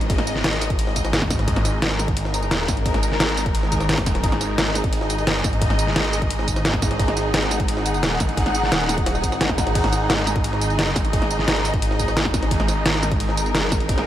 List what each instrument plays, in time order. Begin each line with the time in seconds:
Already playing: detuned saw bass G#1, string section D#4 G#4 D#5
0.01 closed hi-hat
0.10 kick, closed hi-hat, ride
0.18 snare, closed hi-hat
0.27 closed hi-hat, ride, tambourine
0.36 snare
0.44 detuned saw bass G#1, snare, closed hi-hat, ride
0.53 closed hi-hat, ride
0.61 closed hi-hat, ride, tambourine
0.70 kick, closed hi-hat
0.79 closed hi-hat, ride
0.87 snare
0.96 kick, closed hi-hat, ride, tambourine
1.05 snare, tambourine
1.13 snare, closed hi-hat, ride
1.22 kick, snare, ride
1.30 kick, snare, closed hi-hat, ride, tambourine
1.39 snare, closed hi-hat
1.48 detuned saw bass G#1, kick, closed hi-hat, ride
1.56 snare, closed hi-hat
1.65 snare, closed hi-hat, ride, tambourine
1.82 detuned saw bass G#1, snare, closed hi-hat, ride
1.91 string section A#4, snare, closed hi-hat
1.99 snare, closed hi-hat, ride, tambourine
2.08 kick, closed hi-hat
2.17 closed hi-hat, ride
2.25 snare
2.34 closed hi-hat, ride, tambourine
2.43 ride, tambourine
2.51 snare, closed hi-hat, open hi-hat
2.68 detuned saw bass G#1, kick, snare, closed hi-hat, ride, tambourine
2.77 closed hi-hat
2.86 kick, closed hi-hat, ride
2.94 snare, closed hi-hat
3.03 closed hi-hat, ride, tambourine
3.12 snare
3.20 detuned saw bass G#1, snare, closed hi-hat, ride
3.29 closed hi-hat, ride
3.37 closed hi-hat, ride, tambourine
3.46 kick, closed hi-hat
3.55 detuned saw bass G#1, closed hi-hat, ride
3.63 snare
3.72 kick, closed hi-hat, ride, tambourine
3.80 snare, tambourine
3.89 snare, closed hi-hat, ride
3.93 snare, ride
3.98 kick, snare, ride
4.06 kick, snare, closed hi-hat, ride, tambourine
4.15 snare, closed hi-hat
4.24 detuned saw bass G#1, kick, closed hi-hat, ride
4.32 snare, closed hi-hat
4.41 snare, closed hi-hat, ride, tambourine
4.58 detuned saw bass G#1, snare, closed hi-hat, ride
4.66 string section D#5, snare, closed hi-hat
4.75 snare, closed hi-hat, ride, tambourine
4.84 kick, closed hi-hat
4.93 closed hi-hat, ride
5.01 snare
5.10 closed hi-hat, ride, tambourine
5.18 detuned saw bass G1, ride, tambourine
5.27 snare, closed hi-hat, open hi-hat
5.44 detuned saw bass G#1, kick, snare, closed hi-hat, ride, tambourine
5.53 closed hi-hat
5.61 kick, closed hi-hat, ride
5.70 snare, closed hi-hat
5.79 closed hi-hat, ride, tambourine
5.87 snare
5.96 detuned saw bass G#1, snare, closed hi-hat, ride
6.05 closed hi-hat, ride
6.13 closed hi-hat, ride, tambourine
6.22 kick, closed hi-hat
6.30 closed hi-hat, ride
6.39 snare
6.48 kick, closed hi-hat, ride, tambourine
6.56 snare, tambourine
6.65 snare, closed hi-hat, ride
6.74 kick, snare, ride
6.82 kick, snare, closed hi-hat, ride, tambourine
6.91 snare, closed hi-hat
6.99 detuned saw bass G#1, kick, closed hi-hat, ride
7.08 snare, closed hi-hat
7.17 snare, closed hi-hat, ride, tambourine
7.34 detuned saw bass G#1, snare, closed hi-hat, ride
7.42 string section F#5, snare, closed hi-hat
7.51 snare, closed hi-hat, ride, tambourine
7.60 kick, closed hi-hat
7.68 closed hi-hat, ride
7.77 snare
7.86 closed hi-hat, ride, tambourine
7.94 ride, tambourine
8.03 snare, closed hi-hat, open hi-hat
8.20 detuned saw bass G#1, kick, snare, closed hi-hat, ride, tambourine
8.29 closed hi-hat
8.37 kick, closed hi-hat, ride
8.46 snare, closed hi-hat
8.55 closed hi-hat, ride, tambourine
8.63 snare
8.72 detuned saw bass D#1, snare, closed hi-hat, ride
8.80 closed hi-hat, ride
8.89 snare, closed hi-hat, ride, tambourine
8.98 kick, closed hi-hat
9.06 snare, closed hi-hat, ride
9.15 snare, tambourine
9.24 detuned saw bass G#1, kick, closed hi-hat, ride, tambourine
9.32 snare, tambourine
9.41 snare, closed hi-hat, ride
9.49 kick, snare, ride
9.58 kick, snare, closed hi-hat, ride, tambourine
9.67 snare, closed hi-hat
9.75 detuned saw bass G#1, kick, closed hi-hat, crash, ride
9.84 snare, closed hi-hat
9.93 snare, closed hi-hat, ride, tambourine
10.10 detuned saw bass G#1, snare, closed hi-hat, ride
10.18 string section D#5, snare, closed hi-hat
10.27 snare, closed hi-hat, ride, tambourine
10.36 kick, closed hi-hat
10.44 closed hi-hat, ride
10.53 snare
10.62 closed hi-hat, ride, tambourine
10.70 detuned saw bass G1, ride, tambourine
10.79 snare, closed hi-hat, open hi-hat
10.96 detuned saw bass G#1, kick, snare, closed hi-hat, ride, tambourine
11.05 closed hi-hat
11.13 kick, closed hi-hat, ride
11.22 snare, closed hi-hat
11.31 closed hi-hat, ride, tambourine
11.39 snare
11.48 detuned saw bass G#1, snare, closed hi-hat, ride
11.56 closed hi-hat, ride
11.65 closed hi-hat, ride, tambourine
11.74 kick, closed hi-hat
11.82 closed hi-hat, ride
11.91 snare
11.99 kick, closed hi-hat, ride, tambourine
12.08 snare, tambourine
12.17 snare, closed hi-hat, ride
12.25 kick, snare, ride
12.34 kick, snare, closed hi-hat, ride, tambourine
12.43 snare, closed hi-hat
12.51 detuned saw bass G#1, kick, closed hi-hat, ride
12.60 snare, closed hi-hat
12.68 snare, closed hi-hat, ride, tambourine
12.86 detuned saw bass G#1, snare, closed hi-hat, ride
12.94 string section A#4, snare, closed hi-hat
13.03 snare, closed hi-hat, ride, tambourine
13.12 kick, closed hi-hat
13.20 closed hi-hat, ride
13.29 snare
13.37 closed hi-hat, ride, tambourine
13.46 detuned saw bass G1, ride, tambourine
13.55 snare, closed hi-hat, open hi-hat
13.72 detuned saw bass G#1, kick, snare, closed hi-hat, ride, tambourine
13.80 closed hi-hat
13.89 kick, closed hi-hat, ride
13.98 snare, closed hi-hat